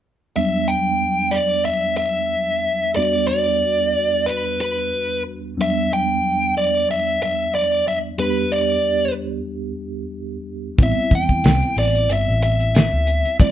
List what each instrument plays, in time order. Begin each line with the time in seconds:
0.36 tine electric piano E2 F#3 G3 B3 D4, lead electric guitar E5
0.68 lead electric guitar G5
1.31 lead electric guitar D5
1.65 lead electric guitar E5
1.97 lead electric guitar E5
2.96 tine electric piano E2 G3 B3 D4 F#4, lead electric guitar D5
3.28 lead electric guitar D5
4.26 lead electric guitar B4
4.61 lead electric guitar B4
5.57 tine electric piano E2 F#3 G3 B3 D4
5.62 lead electric guitar E5
5.93 lead electric guitar G5
6.58 lead electric guitar D5
6.91 lead electric guitar E5
7.23 lead electric guitar E5
7.55 lead electric guitar D5
7.88 lead electric guitar E5
8.18 tine electric piano E2 G3 B3 D4 G4, lead electric guitar B4
8.52 lead electric guitar D5
10.78 fingered electric bass A1, tine electric piano G3 B3 C4 E4, kick, closed hi-hat
10.83 lead electric guitar E5
11.11 fingered electric bass E2, kick, closed hi-hat
11.15 lead electric guitar G5
11.29 kick, closed hi-hat
11.44 fingered electric bass C2, snare, closed hi-hat
11.62 closed hi-hat
11.76 fingered electric bass A1, lead electric guitar D5, open hi-hat
11.95 closed hi-hat
12.09 fingered electric bass G1, lead electric guitar E5, closed hi-hat
12.28 fingered electric bass A1
12.42 lead electric guitar E5, closed hi-hat
12.60 closed hi-hat
12.75 snare, closed hi-hat
12.92 fingered electric bass D2
13.07 closed hi-hat
13.25 closed hi-hat
13.39 tine electric piano G3 A3 C4 E4, lead electric guitar D5, kick, closed hi-hat